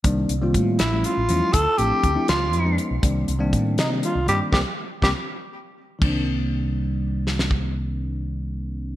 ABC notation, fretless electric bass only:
X:1
M:6/8
L:1/16
Q:3/8=80
K:Cdor
V:1 name="Fretless electric bass" clef=bass
C,,2 C,,2 A,,2 A,,,2 z A,,, =E,, z | D,, z A,,, z D,, z _D,,2 F,,2 z _C,, | C,,2 C,,2 A,,2 C,2 z C,, G,, z | C,, z3 C,, z6 z |
C,,12- | C,,12 |]